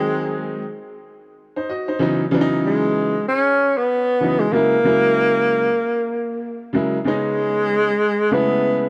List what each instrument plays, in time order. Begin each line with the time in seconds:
Already playing: upright piano D#3 F#3 G#3 C4 D#4, tenor saxophone G#3
1.56 upright piano D#4 C5
1.69 upright piano F#4 D#5
1.88 upright piano D#4 C5
1.99 upright piano C#3 E3 F#3 B3 D#4
2.31 upright piano C#3 E3 F#3 B3 D4
2.41 upright piano D#4
2.66 tenor saxophone G#3
3.28 tenor saxophone C#4
3.77 tenor saxophone B3
4.20 upright piano C#3 E3 F#3 B3 D#4
4.40 tenor saxophone G#3
4.52 upright piano C#3 F#3 G#3 A#3 E4, tenor saxophone A#3
4.84 upright piano C#3 F#3 G#3 A#3 E4
6.73 upright piano C#3 F#3 G#3 A#3 E4
7.04 upright piano C#3 G#3 B3 C#4 D#4, tenor saxophone G#3
8.31 upright piano C#3 G#3 A3 B3 E4, tenor saxophone B3